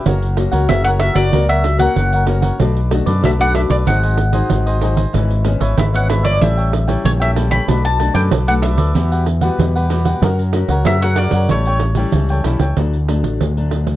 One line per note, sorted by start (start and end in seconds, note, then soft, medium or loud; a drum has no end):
0.05 0.46 F#1 loud
0.05 0.66 F#3 medium
0.05 0.24 A#3 soft
0.05 0.24 C#4 soft
0.05 0.36 F#4 soft
0.05 0.25 F#4 medium
0.05 0.37 A#4 soft
0.05 0.37 C#5 medium
0.05 0.37 F#5 medium
0.05 pandeiro medium
0.22 pandeiro soft
0.37 0.80 A#3 medium
0.37 0.80 C#4 medium
0.37 0.80 F#4 medium
0.37 muted cavaquinho stroke soft
0.37 pandeiro medium
0.52 0.66 C#2 medium
0.52 0.68 A#4 medium
0.52 0.68 C#5 medium
0.52 0.67 F#5 medium
0.52 pandeiro medium
0.69 1.10 F#1 loud
0.69 1.30 C#3 medium
0.69 0.84 F#4 soft
0.69 0.85 A#4 medium
0.69 0.85 C#5 medium
0.69 0.84 E5 medium
0.69 0.85 F#5 medium
0.69 pandeiro medium
0.84 1.12 A#3 medium
0.84 1.12 C#4 medium
0.84 1.12 F#4 medium
0.84 0.99 A#4 medium
0.84 1.00 C#5 medium
0.84 0.89 F#5 loud
0.84 1.00 F#5 medium
0.84 pandeiro soft
0.99 1.15 F#4 medium
0.99 1.15 A#4 medium
0.99 1.15 C#5 medium
0.99 1.17 E5 medium
0.99 1.13 F#5 medium
0.99 pandeiro medium
1.14 1.30 F#1 medium
1.14 1.26 A#3 medium
1.14 1.27 C#4 medium
1.14 1.27 F#4 medium
1.14 1.31 A#4 medium
1.14 1.31 C#5 medium
1.14 1.46 D5 medium
1.14 1.30 F#5 medium
1.14 pandeiro medium
1.31 1.87 C#2 medium
1.31 1.93 F#3 medium
1.31 1.62 A#3 medium
1.31 1.62 C#4 medium
1.31 1.47 F#4 soft
1.31 1.62 F#4 medium
1.31 1.48 A#4 medium
1.31 1.48 C#5 medium
1.31 1.48 F#5 medium
1.31 pandeiro medium
1.49 1.64 A#4 medium
1.49 1.64 C#5 medium
1.49 1.79 E5 medium
1.49 1.64 F#5 medium
1.49 pandeiro soft
1.64 muted cavaquinho stroke soft
1.64 pandeiro medium
1.78 2.22 A#3 medium
1.78 2.22 C#4 medium
1.78 2.22 F#4 medium
1.78 2.12 A#4 medium
1.78 2.11 C#5 medium
1.78 2.24 F#5 medium
1.78 2.11 F#5 medium
1.78 pandeiro medium
1.95 2.51 F#1 medium
1.95 2.56 C#3 medium
1.95 pandeiro medium
2.13 2.27 A#4 medium
2.13 2.28 C#5 medium
2.13 2.27 F#5 medium
2.13 pandeiro soft
2.26 2.54 A#3 soft
2.26 2.54 C#4 medium
2.26 2.54 F#4 medium
2.26 2.43 F#4 soft
2.26 2.43 A#4 medium
2.26 2.42 C#5 medium
2.26 2.41 F#5 medium
2.26 pandeiro medium
2.42 2.59 A#4 soft
2.42 2.58 C#5 medium
2.42 2.58 F#5 medium
2.42 pandeiro medium
2.59 3.00 B1 loud
2.59 3.20 B2 medium
2.59 2.79 A3 medium
2.59 2.79 D4 medium
2.59 2.90 D4 soft
2.59 2.79 F#4 medium
2.59 2.91 A4 soft
2.59 2.91 B4 soft
2.59 2.92 D5 medium
2.59 pandeiro medium
2.77 pandeiro soft
2.91 3.10 A3 medium
2.91 3.10 D4 medium
2.91 3.10 F#4 medium
2.91 muted cavaquinho stroke soft
2.91 pandeiro medium
3.06 3.21 F#2 medium
3.06 3.23 A4 medium
3.06 3.22 B4 medium
3.06 3.22 D5 medium
3.06 pandeiro medium
3.22 3.64 B1 medium
3.22 3.83 F#2 soft
3.22 3.32 A3 medium
3.22 3.33 D4 soft
3.22 3.38 D4 soft
3.22 3.33 F#4 medium
3.22 3.39 A4 soft
3.22 3.39 B4 medium
3.22 3.39 D5 medium
3.22 3.30 E5 medium
3.22 pandeiro medium
3.39 3.82 A3 medium
3.39 3.82 D4 medium
3.39 3.82 F#4 medium
3.39 3.55 A4 soft
3.39 3.55 B4 medium
3.39 3.55 D5 medium
3.39 3.55 F#5 loud
3.39 pandeiro soft
3.55 3.70 D4 medium
3.55 3.70 A4 medium
3.55 3.70 B4 medium
3.55 3.69 D5 medium
3.55 3.60 E5 medium
3.55 pandeiro medium
3.70 3.84 B1 medium
3.70 3.86 A4 medium
3.70 3.86 B4 medium
3.70 3.85 D5 medium
3.70 3.76 D5 medium
3.70 pandeiro medium
3.86 4.41 G#1 medium
3.86 4.47 G#2 medium
3.86 4.16 F#3 medium
3.86 4.16 C4 soft
3.86 4.17 D#4 soft
3.86 4.02 F#4 medium
3.86 4.02 G#4 medium
3.86 4.02 C5 medium
3.86 4.02 D#5 medium
3.86 4.78 F#5 medium
3.86 pandeiro medium
4.03 4.18 G#4 medium
4.03 4.18 C5 medium
4.03 4.18 D#5 medium
4.03 pandeiro soft
4.18 muted cavaquinho stroke soft
4.18 pandeiro medium
4.33 4.76 F#3 medium
4.33 4.77 C4 medium
4.33 4.77 D#4 medium
4.33 4.65 G#4 medium
4.33 4.65 C5 medium
4.33 4.64 D#5 medium
4.33 pandeiro medium
4.50 5.05 G#1 medium
4.50 5.11 D#3 medium
4.50 pandeiro medium
4.66 4.82 G#4 medium
4.66 4.82 C5 medium
4.66 4.81 D#5 medium
4.66 pandeiro soft
4.81 5.02 F#3 medium
4.81 5.03 C4 medium
4.81 5.03 D#4 medium
4.81 4.97 F#4 soft
4.81 4.97 G#4 medium
4.81 4.96 C5 medium
4.81 4.95 D#5 medium
4.81 pandeiro medium
4.97 5.13 G#4 medium
4.97 5.13 C5 medium
4.97 5.12 D#5 medium
4.97 pandeiro medium
5.13 5.55 G#1 loud
5.13 5.74 G#2 medium
5.13 5.32 E3 medium
5.13 5.33 B3 medium
5.13 5.33 C#4 medium
5.13 5.45 E4 soft
5.13 5.45 B4 soft
5.13 5.45 C#5 soft
5.13 5.45 E5 medium
5.13 pandeiro medium
5.30 pandeiro soft
5.45 5.75 E3 medium
5.45 5.75 B3 medium
5.45 5.75 C#4 medium
5.45 muted cavaquinho stroke soft
5.45 pandeiro medium
5.60 5.75 G#1 medium
5.60 5.77 B4 medium
5.60 5.76 C#5 medium
5.60 5.76 E5 medium
5.60 pandeiro medium
5.77 6.24 G#1 loud
5.77 6.38 G#2 medium
5.77 5.92 E4 medium
5.77 5.92 B4 soft
5.77 5.93 C#5 soft
5.77 5.93 E5 medium
5.77 5.84 E5 medium
5.77 pandeiro medium
5.93 6.36 E3 medium
5.93 6.36 B3 medium
5.93 6.36 C#4 medium
5.93 6.08 B4 medium
5.93 6.08 C#5 medium
5.93 6.08 E5 medium
5.93 6.09 F#5 medium
5.93 pandeiro soft
6.08 6.24 E4 medium
6.08 6.24 B4 medium
6.08 6.24 C#5 medium
6.08 6.26 E5 medium
6.08 6.22 E5 medium
6.08 pandeiro medium
6.23 6.38 G1 loud
6.23 6.40 B4 medium
6.23 6.40 C#5 medium
6.23 6.41 D5 medium
6.23 6.39 E5 medium
6.23 pandeiro medium
6.41 6.95 A1 loud
6.41 7.01 A2 medium
6.41 6.84 G3 medium
6.41 6.84 C#4 medium
6.41 6.56 E4 medium
6.41 6.84 E4 medium
6.41 6.56 A4 medium
6.41 6.57 C#5 medium
6.41 7.01 E5 medium
6.41 6.56 G5 medium
6.41 pandeiro medium
6.58 6.72 A4 medium
6.58 6.72 C#5 medium
6.58 6.72 G5 medium
6.58 pandeiro soft
6.73 muted cavaquinho stroke soft
6.73 pandeiro medium
6.87 7.31 G3 medium
6.87 7.31 C#4 medium
6.87 7.31 E4 medium
6.87 7.20 A4 medium
6.87 7.19 C#5 medium
6.87 7.19 G5 medium
6.87 pandeiro medium
7.05 7.59 A#1 loud
7.05 7.65 E3 medium
7.05 7.10 C#5 medium
7.05 pandeiro medium
7.20 7.35 A4 medium
7.20 7.36 C#5 medium
7.20 7.30 E5 loud
7.20 7.35 G5 medium
7.20 pandeiro soft
7.35 7.65 G3 medium
7.35 7.66 C#4 medium
7.35 7.50 E4 soft
7.35 7.66 E4 medium
7.35 7.51 A4 medium
7.35 7.51 C#5 medium
7.35 7.50 G5 medium
7.35 pandeiro medium
7.51 7.68 A4 medium
7.51 7.67 C#5 medium
7.51 7.66 G5 medium
7.51 7.81 B5 loud
7.51 pandeiro medium
7.68 8.09 B1 loud
7.68 8.29 B2 medium
7.68 7.87 A3 soft
7.68 7.98 D4 soft
7.68 7.87 D4 medium
7.68 7.87 F#4 medium
7.68 7.98 A4 soft
7.68 7.99 B4 medium
7.68 7.99 D5 medium
7.68 pandeiro medium
7.85 8.14 A5 loud
7.85 pandeiro soft
7.99 8.29 A3 medium
7.99 8.30 D4 medium
7.99 8.30 F#4 medium
7.99 pandeiro medium
8.14 8.29 F#2 medium
8.14 8.30 A4 medium
8.14 8.30 B4 medium
8.14 8.30 D5 medium
8.14 8.24 G5 medium
8.14 pandeiro medium
8.31 8.78 B1 medium
8.31 8.92 F#3 medium
8.31 8.46 D4 medium
8.31 8.46 A4 medium
8.31 8.47 B4 medium
8.31 8.46 D5 medium
8.31 pandeiro medium
8.47 8.91 A3 medium
8.47 8.91 D4 medium
8.47 8.91 F#4 medium
8.47 8.61 A4 medium
8.47 8.62 B4 medium
8.47 8.62 D5 medium
8.47 8.53 F#5 medium
8.47 pandeiro soft
8.62 8.78 D4 medium
8.62 8.78 A4 medium
8.62 8.77 B4 medium
8.62 8.76 D5 medium
8.62 9.86 E5 medium
8.62 pandeiro medium
8.77 8.92 D2 loud
8.77 8.94 A4 medium
8.77 8.94 B4 medium
8.77 8.93 D5 medium
8.77 pandeiro medium
8.94 9.49 E2 medium
8.94 9.56 E3 medium
8.94 9.25 G3 soft
8.94 9.26 B3 medium
8.94 9.09 E4 medium
8.94 9.26 F#4 medium
8.94 9.10 G4 medium
8.94 9.10 B4 medium
8.94 9.11 F#5 medium
8.94 pandeiro medium
9.12 9.26 G4 medium
9.12 9.26 B4 medium
9.12 9.26 F#5 medium
9.12 pandeiro soft
9.26 muted cavaquinho stroke soft
9.26 pandeiro medium
9.41 9.86 G3 medium
9.41 9.86 B3 medium
9.41 9.86 F#4 medium
9.41 9.74 G4 medium
9.41 9.73 B4 medium
9.41 9.73 F#5 medium
9.41 pandeiro medium
9.59 10.13 E2 medium
9.59 10.20 B2 medium
9.59 pandeiro medium
9.76 9.90 G4 medium
9.76 9.90 B4 medium
9.76 9.90 F#5 medium
9.76 pandeiro soft
9.90 10.20 G3 medium
9.90 10.20 B3 medium
9.90 10.05 E4 medium
9.90 10.20 F#4 medium
9.90 10.06 G4 medium
9.90 10.06 B4 medium
9.90 10.04 F#5 medium
9.90 pandeiro medium
10.05 10.22 G4 medium
10.05 10.21 B4 medium
10.05 10.21 F#5 medium
10.05 pandeiro medium
10.22 10.63 F#2 loud
10.22 10.83 F#3 medium
10.22 10.41 C#4 medium
10.22 10.41 F#4 medium
10.22 10.53 F#4 soft
10.22 10.41 A#4 medium
10.22 10.53 A#4 soft
10.22 10.54 C#5 soft
10.22 10.54 F#5 medium
10.22 pandeiro medium
10.39 pandeiro soft
10.53 10.73 C#4 medium
10.53 10.73 F#4 medium
10.53 10.73 A#4 medium
10.53 muted cavaquinho stroke soft
10.53 pandeiro medium
10.68 10.83 C#2 medium
10.68 10.86 A#4 medium
10.68 10.85 C#5 medium
10.68 10.85 F#5 medium
10.68 pandeiro medium
10.85 11.26 F#2 medium
10.85 11.47 C#3 medium
10.85 10.96 C#4 medium
10.85 10.96 F#4 medium
10.85 11.01 A#4 medium
10.85 10.96 A#4 medium
10.85 11.02 C#5 medium
10.85 11.01 E5 loud
10.85 11.01 F#5 medium
10.85 pandeiro medium
11.02 11.45 C#4 medium
11.02 11.46 F#4 medium
11.02 11.18 A#4 soft
11.02 11.46 A#4 medium
11.02 11.17 C#5 medium
11.02 11.17 F#5 loud
11.02 11.17 F#5 medium
11.02 pandeiro soft
11.16 11.33 F#4 medium
11.16 11.33 A#4 medium
11.16 11.34 C#5 medium
11.16 11.47 D5 medium
11.16 pandeiro medium
11.20 11.32 F#5 medium
11.31 11.47 F#2 medium
11.31 11.49 C#5 medium
11.31 11.48 F#5 medium
11.31 pandeiro medium
11.36 11.50 A#4 medium
11.49 12.04 A1 medium
11.49 12.11 A2 medium
11.49 11.93 G3 soft
11.49 11.93 C#4 soft
11.49 11.65 E4 medium
11.49 11.93 E4 medium
11.49 11.65 A4 medium
11.49 12.42 C#5 medium
11.49 11.66 C#5 medium
11.49 11.66 G5 medium
11.49 pandeiro medium
11.65 11.81 A4 medium
11.65 11.81 C#5 medium
11.65 11.81 G5 medium
11.65 pandeiro soft
11.79 muted cavaquinho stroke soft
11.79 pandeiro medium
11.95 12.40 G3 medium
11.95 12.40 C#4 medium
11.95 12.40 E4 medium
11.95 12.29 C#5 medium
11.95 12.28 G5 medium
11.95 pandeiro medium
12.00 12.29 A4 medium
12.12 12.41 C#2 medium
12.12 12.74 E3 medium
12.12 pandeiro medium
12.29 12.45 C#5 medium
12.29 12.45 G5 medium
12.29 pandeiro soft
12.33 12.45 A4 medium
12.44 12.59 B1 medium
12.44 12.66 G3 medium
12.44 12.66 C#4 soft
12.44 12.60 E4 medium
12.44 12.66 E4 medium
12.44 12.61 A4 medium
12.44 12.61 C#5 medium
12.44 12.60 G5 medium
12.44 pandeiro medium
12.59 12.75 C#2 medium
12.59 12.77 A4 medium
12.59 12.76 C#5 medium
12.59 12.76 G5 medium
12.59 pandeiro medium
12.77 13.24 D2 medium
12.77 13.38 D3 medium
12.77 12.96 F#3 medium
12.77 12.96 A3 medium
12.77 12.97 D4 medium
12.77 pandeiro medium
12.93 pandeiro soft
13.08 13.51 F#3 medium
13.08 13.52 A3 medium
13.08 13.52 D4 medium
13.08 pandeiro medium
13.24 13.38 A1 medium
13.24 pandeiro medium
13.41 13.95 D2 medium
13.41 13.96 A2 soft
13.41 pandeiro medium
13.57 13.96 F#3 medium
13.57 13.96 A3 soft
13.57 13.96 D4 medium
13.57 pandeiro soft
13.71 pandeiro medium
13.87 pandeiro medium